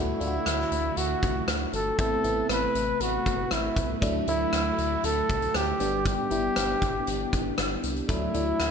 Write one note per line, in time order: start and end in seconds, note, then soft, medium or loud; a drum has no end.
0.00 0.14 D2 loud
0.00 1.97 D3 medium
0.00 0.19 A3 medium
0.00 1.97 A3 medium
0.00 0.19 D4 medium
0.00 0.19 E4 medium
0.00 0.99 E4 medium
0.00 1.97 E4 medium
0.00 0.19 F#4 medium
0.00 1.97 F#4 medium
0.20 0.39 D2 medium
0.20 1.15 A3 medium
0.20 1.15 D4 medium
0.20 1.15 E4 medium
0.20 0.27 F4 medium
0.20 closed hi-hat medium
0.27 1.19 F#4 medium
0.46 0.65 D2 medium
0.46 cross-stick loud
0.46 closed hi-hat medium
0.71 0.90 D2 medium
0.71 closed hi-hat medium
0.97 1.15 D2 medium
0.97 1.48 F#4 loud
0.97 closed hi-hat medium
1.23 1.41 C2 medium
1.23 kick medium
1.23 closed hi-hat medium
1.48 1.66 D2 medium
1.48 cross-stick loud
1.48 closed hi-hat medium
1.73 1.91 G1 loud
1.73 1.98 A4 medium
1.73 closed hi-hat medium
1.98 2.17 A1 loud
1.98 4.00 C3 medium
1.98 2.22 A3 medium
1.98 5.76 A3 medium
1.98 2.22 B3 medium
1.98 2.22 C4 medium
1.98 2.23 E4 medium
1.98 2.47 A4 loud
1.98 4.00 B4 medium
1.98 kick loud
1.98 closed hi-hat medium
2.23 2.42 A1 medium
2.23 3.18 A3 medium
2.23 3.18 B3 medium
2.23 3.19 C4 medium
2.23 3.19 E4 medium
2.23 closed hi-hat medium
2.49 2.68 A1 loud
2.49 3.03 B4 loud
2.49 cross-stick loud
2.49 closed hi-hat medium
2.75 2.93 A1 medium
2.75 closed hi-hat medium
3.00 3.19 A1 loud
3.00 3.54 F#4 medium
3.00 closed hi-hat medium
3.26 3.44 G1 medium
3.26 kick medium
3.26 closed hi-hat medium
3.51 3.70 A1 loud
3.51 3.90 E4 medium
3.51 cross-stick loud
3.51 closed hi-hat medium
3.76 3.95 C2 medium
3.76 kick medium
3.76 closed hi-hat medium
4.01 4.20 D2 loud
4.01 5.78 D3 medium
4.01 4.25 F#3 medium
4.01 4.26 A3 medium
4.01 4.26 D4 medium
4.01 5.78 E4 medium
4.01 4.26 E4 medium
4.01 5.78 F#4 medium
4.01 kick medium
4.01 closed hi-hat medium
4.27 4.46 D2 medium
4.27 5.22 F#3 medium
4.27 5.22 A3 medium
4.27 5.22 D4 medium
4.27 5.22 E4 medium
4.27 5.07 E4 medium
4.27 closed hi-hat medium
4.53 4.71 D2 loud
4.53 cross-stick loud
4.53 closed hi-hat medium
4.78 4.97 D2 loud
4.78 closed hi-hat medium
5.04 5.22 D2 loud
5.04 5.58 A4 loud
5.04 closed hi-hat medium
5.29 5.48 C2 medium
5.29 kick medium
5.29 closed hi-hat medium
5.42 closed hi-hat soft
5.54 5.73 D2 loud
5.54 6.06 G4 loud
5.54 cross-stick loud
5.54 closed hi-hat medium
5.80 6.17 G1 medium
5.80 6.27 G3 medium
5.80 8.06 B3 medium
5.80 6.27 B3 medium
5.80 8.07 D4 medium
5.80 6.28 D4 medium
5.80 8.07 G4 medium
5.80 6.28 G4 medium
5.80 closed hi-hat medium
6.05 7.55 G4 loud
6.05 kick medium
6.05 closed hi-hat medium
6.30 6.49 G1 loud
6.30 7.25 G3 medium
6.30 7.25 B3 medium
6.30 7.26 D4 medium
6.30 7.26 E4 medium
6.30 closed hi-hat medium
6.56 6.75 G1 loud
6.56 cross-stick loud
6.56 closed hi-hat medium
6.82 7.00 G1 medium
6.82 kick medium
6.82 closed hi-hat medium
7.07 7.26 G1 medium
7.07 closed hi-hat medium
7.33 7.51 G1 loud
7.33 kick medium
7.33 closed hi-hat medium
7.58 7.76 G1 medium
7.58 cross-stick loud
7.58 closed hi-hat medium
7.83 8.02 C2 medium
7.83 closed hi-hat medium
7.96 closed hi-hat soft
8.08 8.27 D2 loud
8.08 8.71 D3 medium
8.08 8.32 F#3 medium
8.08 8.32 A3 medium
8.08 8.71 A3 medium
8.08 8.33 D4 medium
8.08 8.71 E4 medium
8.08 8.33 E4 medium
8.08 8.71 E4 loud
8.08 8.71 F#4 medium
8.08 kick medium
8.08 closed hi-hat medium
8.34 8.53 D2 loud
8.34 8.71 F#3 medium
8.34 8.71 A3 medium
8.34 8.71 D4 medium
8.34 8.71 E4 medium
8.34 closed hi-hat medium
8.60 8.71 D2 loud
8.60 cross-stick loud
8.60 closed hi-hat medium